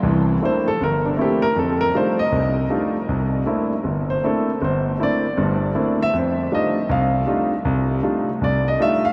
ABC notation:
X:1
M:4/4
L:1/8
Q:"Swing" 1/4=158
K:F
V:1 name="Grand piano"
z2 c A B D G B | A B c _e3 z2 | z4 z c A2 | c2 d2 z3 e |
c2 _e2 f2 z2 | z4 d _e =e f |]
V:2 name="Grand piano"
[C,,E,]2 [A,B,CDE] z G,,,2 [A,B,CDE] z | F,,2 [G,A,D_EF] z C,,2 [G,A,DEF] z | C,,2 [A,B,CDE] z G,,,2 [A,B,CDE] z | G,,,2 [A,B,CDE] z [G,,,G,,]2 [A,B,CDE] z |
F,,2 [G,A,D_EF] z C,,2 [G,A,DEF] z | C,,2 [G,A,D_EF] z C,,2 [G,A,DEF] z |]